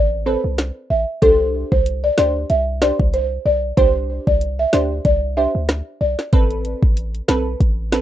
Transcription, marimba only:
0.26 C5
0.90 E5
1.22 A4
1.72 C5
2.04 D5
2.18 D5
2.50 E5
2.82 D5
3.14 C5
3.46 D5
3.77 C5
4.27 D5
4.59 E5
4.74 D5
5.05 D5
5.37 E5
6.01 D5

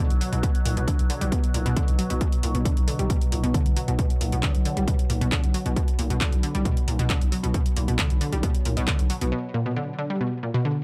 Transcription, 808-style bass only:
0.10 B1
0.33 B1
0.65 B1
0.77 B1
0.99 B1
1.21 B1
1.54 B1
1.66 B1
1.88 B1
2.10 B1
2.43 B1
2.55 B1
2.77 B1
2.99 B1
3.32 B1
3.44 B1
3.66 B1
3.88 B1
4.21 B1
4.32 B1
4.55 B1
4.77 B1
5.10 B1
5.21 B1
5.43 B1
5.66 B1
5.99 B1
6.10 B1
6.32 B1
6.55 B1
6.87 B1
6.99 B1
7.21 B1
7.44 B1
7.77 B1
7.88 B1
8.10 B1
8.32 B1
8.65 B1
8.77 B1
8.99 B1
9.21 B1

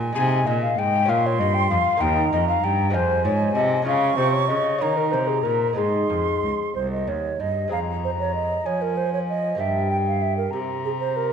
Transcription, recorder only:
0.15 G#5
0.47 D#5
0.62 F5
0.78 G5
1.09 F5
1.26 C#5
1.40 D#5
1.54 G5
1.70 F5
2.01 G5
2.32 D#5
2.49 F5
2.64 G5
2.94 C5
3.25 C#5
3.55 D#5
3.88 F5
4.17 C5
4.32 C#5
4.48 D#5
4.79 C#5
4.97 A#4
5.12 C5
5.27 G#4
5.43 A#4
5.76 G#4
7.71 A#5
8.66 G#5
9.59 G5
10.51 A#5

